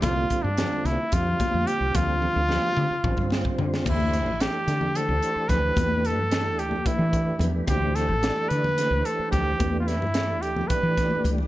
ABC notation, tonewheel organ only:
X:1
M:7/8
L:1/8
Q:1/4=110
K:Dm
V:1 name="Tonewheel organ"
[D,G,CFA]2 [D,G,CFA]2 [D,G,CFG]3 | [D,G,CFA]2 [D,G,CFG]2 [D,G,CFc]3 | [K:Ephr] [E,A,DGc]2 [E,A,DGA]2 [E,A,DGc]3 | [E,A,DGB]2 [E,A,DGA]2 [E,A,DGB]3 |
[E,A,DGc]2 [E,A,DGd]2 [E,A,DGc]3 | [E,A,DGB]2 [E,A,DGA]2 [E,A,DGd]3 |]